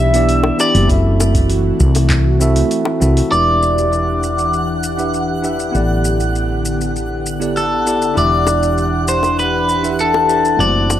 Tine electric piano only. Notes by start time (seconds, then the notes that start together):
Already playing: B3 D4 E4 G4 D5
0.13 B3 D4 E4 G4 D5
0.58 B3 D4 E4 G4 D5
0.88 C4 E4 F#4 A4
0.93 E5
2.40 C4 E4 F#4 A4 E5
3.00 C4 E4 F#4 A4 E5
3.30 D4 E4 G4 B4
3.35 E5
4.97 D4 E4 G4 B4 E5
5.42 D4 E4 G4 B4 E5
5.71 B3 E4 G4 A4
5.76 D5
7.40 B3 E4 G4 A4 D5
7.85 B3 E4 G4 A4 D5
8.14 D4 E4 G4 D5
8.19 E5
9.83 D4 E4 G4 B4 E5
10.28 D4 E4 G4 B4 E5
10.57 A3 C4 E4 F#4
10.62 C5